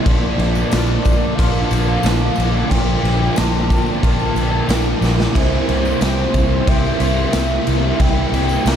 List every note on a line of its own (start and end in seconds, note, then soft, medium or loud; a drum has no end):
0.00 3.23 A#3 medium
0.00 8.76 A#4 medium
0.04 0.30 A#1 medium
0.04 1.37 A#2 medium
0.04 0.70 D3 loud
0.04 0.71 F3 loud
0.04 1.72 F3 medium
0.04 0.72 A#3 medium
0.04 0.73 D4 loud
0.04 1.36 D5 medium
0.04 2.68 A5 medium
0.04 5.31 D6 medium
0.04 kick loud
0.04 crash medium
0.38 0.62 A#1 loud
0.38 tambourine soft
0.38 crash medium
0.55 tambourine medium
0.71 0.96 A#1 medium
0.71 1.36 A#2 medium
0.71 1.36 D3 medium
0.71 1.37 F3 medium
0.71 1.38 A#3 medium
0.71 1.38 D4 medium
0.71 1.36 F4 medium
0.71 snare loud
0.71 tambourine loud
0.71 crash medium
0.88 tambourine soft
1.04 1.30 A#1 medium
1.04 2.04 D4 medium
1.04 kick medium
1.04 tambourine medium
1.04 crash medium
1.35 1.63 A#1 medium
1.35 2.37 A#2 medium
1.35 2.02 D3 medium
1.35 2.02 F3 medium
1.35 2.04 A#3 loud
1.35 3.03 F4 medium
1.35 2.71 F5 loud
1.35 kick loud
1.39 2.03 D4 loud
1.39 crash medium
1.55 tambourine soft
1.71 1.95 A#1 medium
1.71 tambourine medium
1.71 crash medium
2.02 2.28 A#1 medium
2.02 2.68 A#2 medium
2.02 2.70 D3 medium
2.02 2.70 F3 medium
2.02 2.71 A#3 medium
2.02 2.71 D4 loud
2.02 3.70 D4 medium
2.02 snare loud
2.02 tambourine loud
2.02 crash medium
2.20 tambourine soft
2.36 2.62 A#1 medium
2.36 tambourine medium
2.40 crash medium
2.69 2.95 A#1 loud
2.69 3.70 A#2 medium
2.69 3.35 D3 loud
2.69 3.36 F3 loud
2.69 4.36 F3 medium
2.69 3.37 A#3 loud
2.69 3.37 D4 loud
2.69 3.38 G5 loud
2.69 5.33 G5 medium
2.69 kick loud
2.69 tambourine soft
2.69 crash medium
3.03 3.28 A#1 medium
3.03 crash medium
3.35 3.86 A#1 medium
3.35 4.00 A#2 medium
3.35 4.01 D3 medium
3.35 4.02 F3 medium
3.35 4.03 A#3 medium
3.35 4.03 D4 medium
3.35 4.02 F4 medium
3.35 4.03 A5 loud
3.35 snare loud
3.35 tambourine loud
3.35 crash medium
3.54 tambourine soft
3.70 4.69 D4 medium
3.70 kick medium
3.70 tambourine medium
3.70 crash medium
3.86 tambourine soft
4.02 4.27 A#1 medium
4.02 5.02 A#2 medium
4.02 4.67 D3 medium
4.02 4.67 F3 medium
4.02 4.69 A#3 medium
4.02 4.68 D4 medium
4.02 5.35 F4 medium
4.02 4.99 A5 loud
4.02 kick loud
4.02 tambourine soft
4.02 crash medium
4.19 tambourine soft
4.35 4.59 A#1 medium
4.35 tambourine medium
4.35 crash medium
4.68 4.93 A#1 medium
4.68 5.32 A#2 medium
4.68 5.32 D3 medium
4.68 5.33 F3 medium
4.68 5.34 A#3 medium
4.68 5.33 D4 medium
4.68 5.35 D4 medium
4.68 snare loud
4.68 tambourine medium
4.68 crash medium
5.01 5.26 A#1 medium
5.01 snare medium
5.01 tambourine medium
5.20 snare medium
5.20 tambourine soft
5.33 5.59 C2 loud
5.33 5.99 C3 medium
5.33 7.00 E3 medium
5.33 6.00 G3 medium
5.33 6.01 A#3 loud
5.33 6.02 C4 loud
5.33 6.02 E4 loud
5.33 6.70 C5 loud
5.33 8.76 E5 medium
5.33 7.96 C6 medium
5.33 kick loud
5.33 crash medium
5.68 5.92 C2 medium
5.68 7.01 A#3 medium
5.68 tambourine soft
5.68 crash medium
5.85 tambourine medium
6.00 6.25 C2 medium
6.00 6.65 C3 medium
6.00 6.66 G3 medium
6.00 6.68 A#3 medium
6.00 6.69 C4 medium
6.00 6.67 E4 medium
6.00 6.67 G4 medium
6.00 snare loud
6.00 tambourine loud
6.00 crash medium
6.18 tambourine soft
6.34 6.58 C2 medium
6.34 7.32 C4 medium
6.34 kick medium
6.34 tambourine medium
6.34 crash medium
6.66 6.92 C2 medium
6.66 7.31 C3 medium
6.66 7.32 G3 medium
6.66 7.34 A#3 medium
6.66 7.34 C4 loud
6.66 7.34 E4 medium
6.66 8.33 G4 medium
6.66 8.03 E5 loud
6.66 kick loud
6.66 crash medium
6.85 tambourine soft
7.00 7.24 C2 medium
7.00 7.68 A#3 medium
7.00 tambourine medium
7.00 crash medium
7.18 tambourine soft
7.33 7.57 C2 medium
7.33 7.98 C3 medium
7.33 7.98 G3 medium
7.33 7.99 A#3 medium
7.33 8.76 C4 medium
7.33 8.02 C4 medium
7.33 7.99 E4 loud
7.33 snare loud
7.33 tambourine medium
7.33 crash medium
7.67 7.91 C2 medium
7.67 8.32 A#3 medium
7.67 tambourine medium
7.67 crash medium
7.98 8.24 C2 loud
7.98 8.64 C3 medium
7.98 8.76 E3 medium
7.98 8.65 G3 medium
7.98 8.66 A#3 loud
7.98 8.66 E4 loud
7.98 8.76 G5 medium
7.98 8.69 G5 loud
7.98 kick loud
7.98 crash medium
8.03 8.67 C4 loud
8.32 8.56 C2 medium
8.32 8.76 A#3 medium
8.32 tambourine soft
8.32 crash medium
8.49 tambourine medium
8.65 8.76 C2 medium
8.65 8.76 C3 medium
8.65 8.76 G3 medium
8.65 8.76 A#3 medium
8.65 8.76 C4 medium
8.65 8.76 E4 medium
8.65 8.76 G4 medium
8.65 8.76 A#5 loud
8.65 snare loud
8.65 tambourine medium
8.65 crash medium